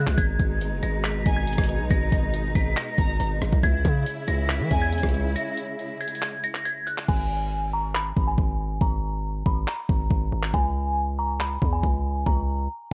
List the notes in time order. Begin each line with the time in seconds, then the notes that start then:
Already playing: C#3 G#3 E4 F#6
0.07 C#2, kick, clap
0.18 G#1 B2 D#4 G#6, kick, closed hi-hat
0.39 G#1, kick, closed hi-hat
0.61 closed hi-hat
0.72 F#1
0.83 G#1 A#6, closed hi-hat
1.04 B6, clap, closed hi-hat
1.26 G#1 G#5, kick, closed hi-hat
1.36 G#6
1.47 closed hi-hat
1.53 closed hi-hat
1.58 G#1, kick, cross-stick, closed hi-hat
1.64 closed hi-hat
1.69 closed hi-hat
1.80 B1
1.91 G#1 A#6, kick, closed hi-hat
2.12 G#1, kick, closed hi-hat
2.34 closed hi-hat
2.55 G#1 B6, kick, closed hi-hat
2.77 A#6, clap, closed hi-hat
2.98 G#1 A#5, kick, closed hi-hat
3.20 G#1, closed hi-hat
3.42 G#1, cross-stick, closed hi-hat
3.52 B1, kick
3.63 C#2 C#3 G#3 E4 G#6, kick, closed hi-hat
3.85 C#3, kick, closed hi-hat
4.06 closed hi-hat
4.28 C#2 A#6, closed hi-hat
4.50 B6, clap, closed hi-hat
4.60 E3
4.71 E2 G#5, kick, closed hi-hat
4.82 G#6
4.93 closed hi-hat
4.98 closed hi-hat
5.04 C#2, kick, cross-stick, closed hi-hat
5.09 closed hi-hat
5.14 closed hi-hat
5.36 A#6, closed hi-hat
5.57 closed hi-hat
5.79 closed hi-hat
6.01 G#6, closed hi-hat
6.08 closed hi-hat
6.15 closed hi-hat
6.22 clap, closed hi-hat
6.44 A#6, closed hi-hat
6.55 clap, closed hi-hat
6.65 G#6, closed hi-hat
6.87 F#6, closed hi-hat
6.98 clap
7.08 G#1 G#5, kick, crash
7.73 A#5
7.95 B5, clap
8.16 G#1, kick
8.27 G#5
8.38 G#1, kick
8.81 G#1 A#5, kick
9.46 G#1 B5, kick
9.68 A#5, clap
9.89 G#1, kick
10.11 G#1, kick
10.32 G#1
10.43 clap
10.54 C#2 G#5, kick
11.19 A#5
11.40 B5, clap
11.62 E2, kick
11.73 G#5
11.83 C#2, kick
12.26 C#2 A#5, kick